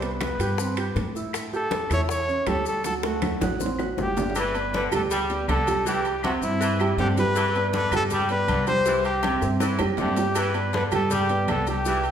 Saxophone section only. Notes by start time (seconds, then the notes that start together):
4.36 E3
4.73 D3
5.10 G3
5.48 D3
5.86 E3
6.24 C3
6.60 E3
6.98 D3
7.35 E3
7.73 D3
8.12 G3
8.50 D3
8.87 E3
9.24 C3
9.61 E3
9.98 D3
10.35 E3
10.72 D3
11.10 G3
11.49 D3
11.86 E3